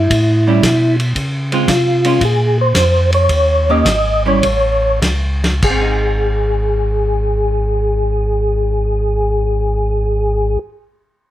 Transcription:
0.00 0.96 E4 medium
0.10 0.61 A2 medium
0.10 kick soft
0.10 ride medium
0.47 0.61 G3 medium
0.47 0.62 C#4 medium
0.47 0.62 E4 medium
0.62 1.14 B2 medium
0.62 kick soft
0.62 snare medium
0.62 hi-hat pedal medium
0.62 ride medium
1.00 ride soft
1.15 1.66 C#3 medium
1.15 kick soft
1.15 ride soft
1.52 1.67 G#3 medium
1.52 1.67 C4 medium
1.52 1.67 F4 medium
1.52 ride soft
1.67 2.19 C3 medium
1.67 2.24 F4 medium
1.67 kick soft
1.67 snare medium
1.67 hi-hat pedal medium
1.67 ride medium
2.04 2.20 G#3 medium
2.04 2.20 C#4 medium
2.04 2.20 F4 medium
2.04 ride soft
2.21 2.73 A#2 medium
2.21 kick soft
2.21 ride medium
2.25 2.58 G#4 medium
2.61 3.11 C5 medium
2.74 3.28 F2 medium
2.74 kick soft
2.74 snare medium
2.74 hi-hat pedal medium
2.74 ride medium
3.12 3.71 C#5 loud
3.12 ride soft
3.29 3.84 D#2 medium
3.29 kick soft
3.29 ride soft
3.69 3.85 D#3 medium
3.69 3.85 A#3 medium
3.69 3.85 C#4 medium
3.69 3.85 G4 medium
3.69 4.23 D#5 medium
3.85 4.41 G#1 medium
3.85 kick soft
3.85 snare medium
3.85 hi-hat pedal medium
3.85 ride medium
4.26 4.42 G3 medium
4.26 4.42 C#4 medium
4.26 4.42 E4 medium
4.26 5.00 C#5 medium
4.42 5.00 A1 medium
4.42 kick soft
4.42 ride medium
5.01 5.61 C#2 medium
5.01 kick soft
5.01 snare medium
5.01 hi-hat pedal soft
5.01 ride medium
5.44 snare medium
5.44 ride soft
5.62 10.57 G#1 medium
5.62 10.59 G#4 medium
5.62 kick soft
5.62 crash medium
5.70 10.69 C4 medium
5.82 10.80 D#4 medium

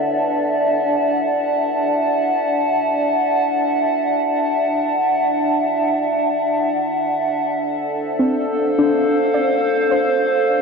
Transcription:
0.00 8.47 D4 medium
0.00 0.26 B4 medium
0.00 8.45 D5 medium
0.00 7.48 E5 medium
0.00 7.48 F#5 medium
0.00 8.71 A5 medium
7.47 10.62 A4 medium
7.69 10.62 C5 medium
8.18 8.92 C4 medium
8.18 10.62 F5 medium
8.78 10.62 D4 medium
9.34 10.05 D5 medium
9.91 10.62 C5 medium

